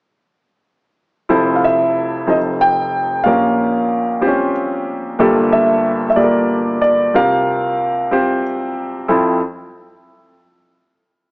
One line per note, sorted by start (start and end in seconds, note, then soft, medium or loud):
1.29 2.23 F1 medium
1.29 2.24 F2 medium
1.29 2.13 E4 medium
1.29 2.13 F4 medium
1.29 2.13 A4 medium
1.29 2.13 C5 medium
1.56 1.63 F5 soft
1.64 2.31 E5 medium
2.27 3.21 F1 soft
2.27 3.21 F2 soft
2.27 3.10 D#4 soft
2.27 3.11 F4 soft
2.27 3.11 A4 soft
2.27 3.11 C5 medium
2.27 2.37 D#5 medium
2.61 3.28 G5 medium
3.24 5.16 A#1 soft
3.24 5.16 A#2 soft
3.24 4.09 C#4 medium
3.24 4.09 F4 medium
3.24 4.09 G4 medium
3.24 4.09 A#4 medium
3.24 4.50 F5 medium
4.21 4.28 C4 medium
4.21 5.05 F4 medium
4.21 5.05 G4 medium
4.21 5.06 C5 medium
4.27 5.08 C#4 medium
5.19 7.11 G1 medium
5.19 7.11 G2 medium
5.19 6.03 A#3 medium
5.19 6.03 F4 medium
5.19 6.03 G4 medium
5.19 6.03 A4 medium
5.53 6.08 E5 medium
6.10 6.17 E5 medium
6.16 7.00 A#3 medium
6.16 7.00 F4 soft
6.16 7.00 G4 soft
6.16 6.24 A4 soft
6.16 6.80 D5 medium
6.24 7.04 A#4 medium
6.82 7.15 D5 medium
7.14 9.05 C2 soft
7.14 9.05 C3 soft
7.14 7.98 C4 medium
7.14 7.98 F4 medium
7.14 7.98 G4 medium
7.14 7.98 A#4 medium
7.14 8.41 F5 medium
8.11 8.95 C4 medium
8.11 8.96 F4 medium
8.11 8.95 G4 medium
8.11 8.96 C5 medium
9.08 9.39 F2 medium
9.08 9.39 C4 medium
9.08 9.39 E4 medium
9.08 9.39 F4 medium
9.08 9.39 A4 medium